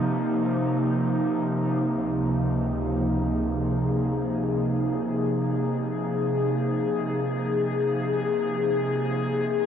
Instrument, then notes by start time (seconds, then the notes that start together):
analog synth pad
Already playing: C3 F3 A#3 D#4 G4
1.83 C#2
3.06 G#4
7.28 C3